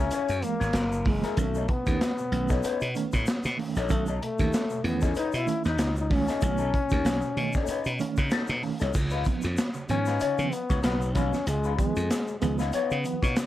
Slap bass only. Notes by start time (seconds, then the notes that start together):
0.12 muted slap bass stroke
0.29 F#2
0.61 G#1
0.74 F#1
1.06 F#1
1.37 B1
1.87 D#2
2.32 B1
2.65 muted slap bass stroke
2.82 B2
3.13 A2
3.45 B2
3.76 A#1
3.90 B1
4.40 D#2
4.84 E2
5.16 muted slap bass stroke
5.34 B2
5.65 D#2
5.79 C#2
6.11 C#2
6.42 B1
6.92 D#2
7.05 B1
7.37 B2
7.68 muted slap bass stroke
7.86 B2
8.18 C#3
8.49 B2
8.81 C2
8.95 C#2
9.44 F2
9.90 G#2
10.22 muted slap bass stroke
10.39 C#3
10.71 C#2
10.84 B1
11.15 B1
11.47 C#2
11.96 F2
12.42 C#2
12.91 C#3
13.23 B2